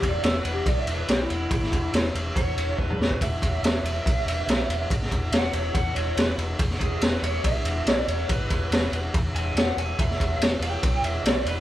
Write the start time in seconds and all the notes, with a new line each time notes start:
0.02 E1, kick, ride
0.09 D5
0.23 E1 E5, snare, ride
0.38 B4
0.45 E1, ride
0.52 G4
0.66 B1 D5, kick, ride
0.81 E5
0.87 E1, ride
0.94 B4
1.08 B1 G4, snare, ride
1.22 E4
1.30 E1, ride
1.51 G#1, kick, ride
1.63 snare
1.72 E1, kick, ride
1.94 E1, snare, ride
2.15 E1, ride
2.36 E2 C#5, kick, ride
2.57 E1, ride
2.79 E1 B4, kick
2.90 mid tom
2.99 E1, snare
3.11 kick
3.21 E1 E5, kick, ride
3.42 E1, kick, ride
3.63 E1 E5, snare, ride
3.83 E1, ride
4.06 B1, kick, ride
4.26 E1, ride
4.47 B1, snare, ride
4.69 E1, ride
4.90 G#1, kick, ride
5.02 snare
5.11 E1, kick, ride
5.32 E1 F#5, snare, ride
5.53 E1 C#5, ride
5.74 E2 F#5, kick, ride
5.95 E1 C#5, ride
6.17 E1 B4, snare, ride
6.38 E1, ride
6.59 E1, kick, ride
6.71 snare
6.80 E1 G#4, kick, ride
7.01 E1 B4, snare, ride
7.14 snare
7.22 E1 C#5, ride
7.44 B1 E5, kick, ride
7.65 E1, ride
7.86 B1, snare, ride
7.92 D5
8.08 E1 C#5, ride
8.29 G#1 B4, kick, ride
8.50 E1 B4, kick, ride
8.71 E1, snare, ride
8.84 snare
8.92 E1, ride
9.14 E2, kick, ride
9.35 E1 G#5, ride
9.55 E1 F#5, snare, ride
9.77 E1 G#5, ride
9.99 E1 E5, kick, ride
10.11 snare
10.20 E1, kick, ride
10.39 E1, snare, ride
10.53 snare
10.60 E1 G5, ride
10.83 B1, kick, ride
11.03 E1 E5, ride
11.24 B1 D5, snare, ride
11.45 E1 B4, ride